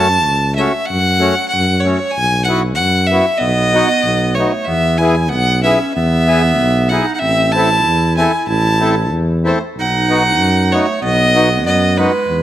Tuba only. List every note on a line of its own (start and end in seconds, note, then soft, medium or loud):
0.00 0.27 F#2 medium
0.25 0.67 C#2 medium
0.90 1.31 F#2 medium
1.54 1.95 F#2 medium
2.17 2.81 B1 medium
2.79 3.20 F#2 medium
3.41 3.82 B1 medium
4.05 4.46 B1 medium
4.68 5.35 E2 medium
5.33 5.74 B1 loud
5.96 6.61 E2 medium
6.60 7.01 B1 medium
7.22 7.87 A1 medium
7.85 8.26 E2 medium
8.48 9.13 A1 loud
9.11 9.53 E2 medium
9.76 10.39 B1 medium
10.38 10.79 F#2 loud
11.03 11.66 B1 loud
11.65 12.06 F#2 medium
12.28 12.43 E2 medium